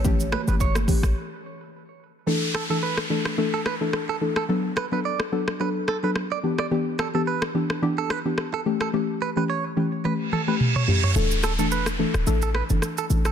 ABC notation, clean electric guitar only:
X:1
M:4/4
L:1/16
Q:"Swing 16ths" 1/4=108
K:D
V:1 name="Clean electric guitar"
z2 B B c2 z8 z2 | z2 A A B2 z3 A B z2 A z A | z2 B B d2 z2 B z A B z d z d | z2 A A B2 z3 A B z2 A z A |
z2 B B c2 z2 B z A B z c z c | z2 A A B2 z3 A B z2 A z A |]